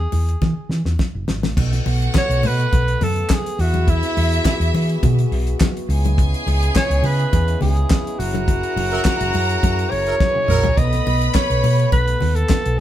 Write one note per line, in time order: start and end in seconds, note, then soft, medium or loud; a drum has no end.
0.00 0.96 G#4 medium
0.12 0.34 E2 medium
0.12 open hi-hat medium
0.12 muted conga medium
0.29 closed hi-hat soft
0.42 0.53 E3 medium
0.42 kick loud
0.42 snare soft
0.42 muted conga medium
0.42 low conga medium
0.69 0.81 E3 medium
0.69 snare medium
0.85 0.95 E2 medium
0.85 snare medium
0.99 kick loud
0.99 snare medium
0.99 high conga medium
1.15 1.25 F#1 medium
1.28 1.43 G#1 medium
1.28 snare medium
1.28 high conga medium
1.43 1.53 A1 medium
1.43 snare medium
1.43 high conga medium
1.57 1.78 B1 loud
1.57 3.57 A3 medium
1.57 8.15 B3 medium
1.57 3.27 F#4 loud
1.57 3.27 F#5 loud
1.57 kick loud
1.57 crash loud
1.57 muted conga soft
1.73 snare soft
1.73 closed hi-hat soft
1.86 2.07 B1 loud
1.86 open hi-hat medium
1.86 muted conga medium
2.02 closed hi-hat medium
2.14 2.48 C#5 loud
2.14 kick loud
2.14 snare loud
2.14 clap medium
2.14 closed hi-hat medium
2.14 high conga medium
2.29 2.45 B1 medium
2.29 closed hi-hat medium
2.43 2.65 B2 loud
2.43 3.05 B4 loud
2.43 open hi-hat medium
2.43 muted conga medium
2.60 closed hi-hat soft
2.73 2.94 B1 loud
2.73 kick loud
2.73 closed hi-hat medium
2.73 muted conga medium
2.88 closed hi-hat soft
3.01 3.23 F#2 medium
3.01 3.35 A4 medium
3.01 open hi-hat medium
3.01 low conga medium
3.16 closed hi-hat soft
3.29 3.62 G#4 loud
3.29 kick loud
3.29 snare loud
3.29 clap loud
3.29 closed hi-hat medium
3.29 high conga medium
3.46 closed hi-hat medium
3.57 4.02 E2 loud
3.57 5.86 E3 medium
3.57 5.56 E4 loud
3.57 5.86 F#4 medium
3.57 3.91 F#4 loud
3.57 5.86 G#4 medium
3.57 5.56 E5 loud
3.57 open hi-hat medium
3.74 closed hi-hat medium
3.74 high conga medium
3.88 5.04 E4 loud
3.88 kick loud
3.88 closed hi-hat medium
3.88 muted conga soft
4.03 snare soft
4.03 closed hi-hat soft
4.17 4.38 E2 loud
4.17 open hi-hat medium
4.17 muted conga medium
4.32 closed hi-hat soft
4.44 kick loud
4.44 snare loud
4.44 clap medium
4.44 closed hi-hat medium
4.44 high conga medium
4.60 4.70 E2 loud
4.60 closed hi-hat medium
4.74 4.95 E3 loud
4.74 open hi-hat medium
4.74 muted conga medium
4.89 closed hi-hat medium
5.03 5.24 B2 loud
5.03 kick loud
5.03 closed hi-hat medium
5.03 muted conga medium
5.03 low conga medium
5.19 closed hi-hat soft
5.31 5.53 B1 loud
5.31 open hi-hat medium
5.47 closed hi-hat soft
5.60 kick loud
5.60 snare loud
5.60 clap loud
5.60 closed hi-hat medium
5.60 high conga medium
5.77 closed hi-hat soft
5.88 6.31 C#2 loud
5.88 8.16 C#3 medium
5.88 8.16 G#3 medium
5.88 10.73 E4 medium
5.88 7.86 G#4 loud
5.88 7.86 G#5 loud
5.88 open hi-hat medium
6.05 closed hi-hat medium
6.05 high conga medium
6.18 kick loud
6.18 closed hi-hat medium
6.18 muted conga soft
6.34 closed hi-hat medium
6.46 6.68 C#2 medium
6.46 open hi-hat medium
6.46 muted conga soft
6.62 closed hi-hat medium
6.75 7.07 C#5 loud
6.75 kick loud
6.75 snare loud
6.75 clap medium
6.75 closed hi-hat medium
6.75 high conga medium
6.90 7.00 C#2 medium
6.90 closed hi-hat medium
7.03 7.25 C#3 loud
7.03 7.61 B4 loud
7.03 open hi-hat medium
7.03 muted conga medium
7.20 closed hi-hat soft
7.33 7.54 E2 loud
7.33 kick loud
7.33 closed hi-hat medium
7.33 muted conga medium
7.48 closed hi-hat soft
7.61 7.83 C#2 loud
7.61 8.20 G#4 medium
7.61 open hi-hat medium
7.61 low conga medium
7.77 closed hi-hat soft
7.90 kick loud
7.90 snare loud
7.90 clap medium
7.90 closed hi-hat medium
7.90 high conga medium
8.07 closed hi-hat soft
8.18 8.62 F#1 loud
8.18 10.74 F#3 medium
8.18 10.74 C#4 medium
8.18 9.92 F#4 loud
8.18 10.74 G#4 medium
8.18 10.74 A#4 medium
8.18 10.17 A#4 loud
8.18 10.17 A#5 loud
8.18 open hi-hat medium
8.34 closed hi-hat medium
8.34 high conga medium
8.48 kick loud
8.48 closed hi-hat medium
8.48 muted conga soft
8.63 closed hi-hat medium
8.76 8.97 F#1 loud
8.76 open hi-hat medium
8.76 muted conga medium
8.92 9.01 F#3 medium
8.92 9.01 E4 medium
8.92 9.01 A#4 loud
8.92 closed hi-hat medium
9.04 kick loud
9.04 snare loud
9.04 clap medium
9.04 closed hi-hat medium
9.04 high conga medium
9.20 9.30 F#1 loud
9.20 closed hi-hat medium
9.33 9.55 F#2 loud
9.33 open hi-hat medium
9.33 muted conga medium
9.49 closed hi-hat soft
9.63 9.84 F#2 loud
9.63 kick loud
9.63 closed hi-hat medium
9.63 muted conga medium
9.79 closed hi-hat soft
9.91 10.13 F#1 loud
9.91 10.79 C#5 loud
9.91 open hi-hat medium
10.07 10.16 F#3 medium
10.07 10.16 E4 medium
10.07 10.16 A#4 medium
10.07 closed hi-hat soft
10.20 kick loud
10.20 snare medium
10.20 high conga medium
10.29 10.36 B3 medium
10.29 10.36 B4 medium
10.35 10.42 C#4 medium
10.35 10.42 C#5 medium
10.35 high tom medium
10.43 10.49 D#4 medium
10.43 10.49 D#5 medium
10.48 10.70 A#1 medium
10.48 10.68 F#3 medium
10.48 10.57 E4 medium
10.48 10.68 E4 medium
10.48 10.68 A#4 loud
10.48 10.56 E5 medium
10.48 mid tom loud
10.48 high conga medium
10.56 10.64 F#4 medium
10.56 10.64 F#5 medium
10.63 10.71 G#4 medium
10.63 10.71 G#5 medium
10.63 floor tom loud
10.63 high conga medium
10.70 10.77 A#4 medium
10.70 10.77 A#5 medium
10.77 10.99 B1 loud
10.77 12.76 A3 medium
10.77 12.76 B3 medium
10.77 12.46 B4 loud
10.77 11.30 D#5 loud
10.77 12.46 B5 loud
10.77 kick loud
10.77 closed hi-hat medium
10.77 muted conga soft
10.93 snare soft
10.93 closed hi-hat medium
11.06 11.28 B1 loud
11.06 open hi-hat medium
11.06 muted conga medium
11.22 closed hi-hat medium
11.30 11.36 D#5 medium
11.30 closed hi-hat medium
11.34 11.92 C#5 loud
11.34 kick loud
11.34 snare loud
11.34 clap medium
11.34 high conga medium
11.50 11.60 B1 medium
11.50 closed hi-hat medium
11.63 11.85 B2 loud
11.63 open hi-hat medium
11.63 muted conga medium
11.79 closed hi-hat soft
11.92 12.14 B1 loud
11.92 12.37 B4 loud
11.92 kick loud
11.92 closed hi-hat medium
11.92 muted conga medium
12.08 closed hi-hat soft
12.20 12.43 D#2 medium
12.20 open hi-hat medium
12.20 low conga medium
12.35 12.79 A4 loud
12.35 closed hi-hat soft
12.49 kick loud
12.49 snare loud
12.49 clap medium
12.49 closed hi-hat medium
12.49 high conga medium
12.66 12.75 B1 medium
12.66 closed hi-hat medium
12.76 12.80 E3 medium
12.76 12.80 B3 medium
12.76 12.80 F#4 medium
12.76 12.80 G#4 medium